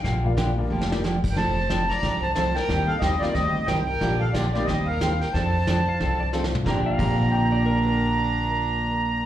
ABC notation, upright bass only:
X:1
M:4/4
L:1/8
Q:"Swing" 1/4=181
K:Bb
V:1 name="Upright bass" clef=bass
B,,,4 F,,,4 | F,,,4 C,,4 | E,,2 E,,2 D,,2 C,,2 | B,,,4 E,,4 |
F,,4 C,,4 | B,,, z B,,,6- | B,,,8 |]